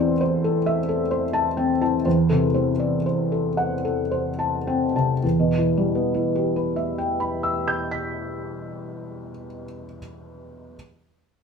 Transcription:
0.00 2.00 E2 medium
0.00 1.81 E3 soft
0.00 0.12 C4 soft
0.00 0.44 A4 medium
0.00 0.21 C5 medium
0.00 0.20 D5 soft
0.21 0.56 C5 medium
0.44 0.79 A4 medium
0.66 1.02 E5 medium
0.89 1.25 A4 soft
1.11 1.48 C5 medium
1.33 1.71 A5 medium
1.57 1.96 C4 soft
1.57 1.81 G5 soft
1.81 2.06 E3 soft
1.81 2.06 A5 soft
2.05 5.19 E2 medium
2.05 2.45 C5 soft
2.30 2.70 C3 soft
2.30 2.70 A4 soft
2.54 2.96 C4 soft
2.54 2.95 C5 soft
2.79 3.05 D5 soft
3.06 3.47 C5 soft
3.32 3.74 A4 soft
3.57 4.00 F#5 soft
3.85 4.28 A4 soft
4.11 4.56 C5 soft
4.39 4.84 A5 soft
4.67 5.12 C4 soft
4.67 4.95 G5 soft
4.96 5.23 C3 soft
4.96 5.23 A5 soft
5.23 9.30 E2 soft
5.40 9.47 B2 soft
5.58 9.65 E3 soft
5.77 9.84 G3 soft
5.95 9.98 B3 soft
6.14 9.98 E4 soft
6.36 9.99 G4 soft
6.56 9.99 B4 soft
6.76 9.98 E5 soft
6.98 9.98 G5 soft
7.20 9.98 B5 soft
7.43 9.98 E6 soft
7.68 9.98 G6 soft
7.91 9.97 B6 soft

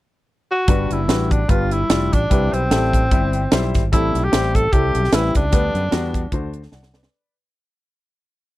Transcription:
0.51 0.94 F#4 medium
0.68 0.87 G1 medium
0.68 1.28 G2 medium
0.68 0.98 G3 medium
0.68 0.98 D4 medium
0.68 0.98 F#4 medium
0.68 0.98 B4 medium
0.68 kick medium
0.68 closed hi-hat medium
0.90 1.06 F#1 medium
0.90 1.33 E4 medium
0.90 closed hi-hat medium
1.08 1.43 A1 medium
1.08 1.38 G3 medium
1.08 1.38 D4 soft
1.08 1.39 F#4 medium
1.08 1.39 B4 medium
1.08 snare medium
1.08 closed hi-hat medium
1.31 1.51 D4 medium
1.31 kick medium
1.31 closed hi-hat medium
1.48 1.84 G1 medium
1.48 2.08 G2 medium
1.48 1.78 G3 medium
1.48 1.79 D4 medium
1.48 1.79 F4 soft
1.48 1.74 F4 medium
1.48 1.79 B4 medium
1.48 kick loud
1.48 closed hi-hat medium
1.71 2.15 E4 medium
1.71 closed hi-hat medium
1.90 2.09 F1 medium
1.90 2.19 G3 medium
1.90 2.20 D4 medium
1.90 2.20 F4 medium
1.90 2.20 D5 medium
1.90 snare loud
1.90 closed hi-hat medium
2.13 2.28 A1 medium
2.13 2.55 D4 medium
2.13 kick medium
2.13 closed hi-hat medium
2.30 2.50 C2 medium
2.30 2.90 C3 medium
2.30 2.60 G3 medium
2.30 2.60 C4 medium
2.30 2.61 E4 medium
2.30 2.61 B4 medium
2.30 kick medium
2.30 closed hi-hat medium
2.53 2.68 B1 medium
2.53 3.74 C4 medium
2.53 closed hi-hat medium
2.70 3.11 A1 medium
2.70 3.00 G3 medium
2.70 3.01 C4 medium
2.70 3.01 E4 medium
2.70 3.01 A4 medium
2.70 snare medium
2.70 closed hi-hat medium
2.93 kick medium
2.93 closed hi-hat medium
3.11 3.46 G1 medium
3.11 3.41 G3 medium
3.11 3.41 C4 medium
3.11 3.41 E4 medium
3.11 3.42 G4 medium
3.11 kick loud
3.11 closed hi-hat medium
3.33 closed hi-hat medium
3.51 3.71 B1 medium
3.51 3.81 G3 medium
3.51 3.81 C4 medium
3.51 3.82 E4 medium
3.51 3.82 C5 medium
3.51 snare loud
3.51 closed hi-hat medium
3.74 3.90 G#1 medium
3.74 kick medium
3.74 snare soft
3.74 closed hi-hat medium
3.92 4.12 A1 medium
3.92 4.51 A2 medium
3.92 4.22 G3 medium
3.92 4.22 C4 medium
3.92 4.25 E4 medium
3.92 4.22 E4 medium
3.92 4.22 A4 medium
3.92 kick medium
3.92 closed hi-hat medium
4.15 4.30 B1 medium
4.15 closed hi-hat medium
4.24 4.56 G4 medium
4.32 4.67 A1 medium
4.32 4.61 G3 medium
4.32 4.62 C4 medium
4.32 4.62 E4 medium
4.32 4.62 C5 medium
4.32 snare medium
4.32 closed hi-hat medium
4.55 4.74 A4 medium
4.55 kick medium
4.55 closed hi-hat medium
4.72 4.92 C2 medium
4.72 5.02 G3 medium
4.72 5.02 C4 medium
4.72 5.02 E4 medium
4.72 5.15 G4 medium
4.72 5.03 A4 medium
4.72 kick medium
4.72 closed hi-hat medium
4.95 5.10 B1 medium
4.95 closed hi-hat medium
5.04 snare soft
5.12 5.32 A1 medium
5.12 5.42 G3 medium
5.12 5.42 C4 medium
5.12 5.35 E4 medium
5.12 5.42 E4 medium
5.12 5.43 B4 medium
5.12 snare loud
5.12 closed hi-hat medium
5.35 5.50 C#2 medium
5.35 6.51 D4 medium
5.35 kick medium
5.35 closed hi-hat medium
5.52 5.72 D2 medium
5.52 6.11 D3 medium
5.52 5.81 G3 medium
5.52 5.82 B3 medium
5.52 5.82 D4 medium
5.52 5.82 B4 medium
5.52 kick medium
5.52 closed hi-hat medium
5.75 5.90 F#2 medium
5.75 closed hi-hat medium
5.91 6.26 E2 medium
5.91 6.21 G3 medium
5.91 6.21 B3 medium
5.91 6.21 D4 medium
5.91 6.22 F#4 medium
5.91 snare loud
5.91 closed hi-hat medium
6.14 kick medium
6.14 closed hi-hat medium
6.32 6.66 D2 medium
6.32 6.91 D3 medium
6.32 6.61 A3 medium
6.32 6.62 D4 medium
6.32 6.62 F#4 medium
6.32 6.62 C5 medium
6.32 kick medium
6.32 closed hi-hat medium
6.54 closed hi-hat medium
6.63 snare soft
6.72 7.06 C2 medium
6.72 6.93 D5 soft
6.72 6.94 F#5 medium
6.72 snare soft
6.83 snare soft
6.94 7.33 B4 soft
6.94 7.32 D5 medium
6.94 snare medium
7.03 snare medium

